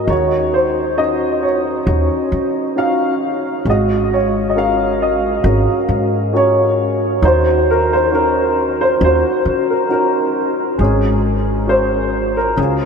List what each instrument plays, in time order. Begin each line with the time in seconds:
Already playing: upright piano D#5
0.07 upright bass D#2, upright piano D#3 C#5
0.12 upright piano F#4
0.54 upright piano C5
0.97 upright piano C#4 D#4 F#4 D#5
1.43 upright piano C#5
1.86 upright bass D#2, upright piano C#4 D#4 F#4
2.32 upright bass D#3
2.76 upright piano C#4 D#4 F#4 F5
3.65 upright bass G#1, upright piano G#3
3.70 upright piano F#4 D#5
4.13 upright piano C#5
4.50 upright piano D#5
4.55 upright piano C#4 F#4 G#4 A#4 F5
5.02 upright piano D#5
5.44 upright bass G#1, upright piano C#4 F#4 G#4 A#4
5.89 upright bass G#2
6.33 upright piano C#4 F#4 G#4 A#4 C#5
7.22 upright bass D#2, upright piano D#3 F#4 C5
7.70 upright piano A#4
7.93 upright piano C5
8.11 upright piano C#4 D#4 F#4 A#4
8.81 upright piano C5
8.99 upright bass D#2, upright piano C#4 D#4 F#4
9.04 upright piano F#4 C5
9.45 upright bass D#3
9.70 upright piano A#4
9.89 upright piano C#4 D#4 F#4 A#4
10.78 upright bass G#1, upright piano G#3 C#4 G#4
11.67 upright piano C#4 F#4 G#4 A#4 C5
12.37 upright piano A#4
12.56 upright bass C#2, upright piano C#3 G#4
12.61 upright piano F4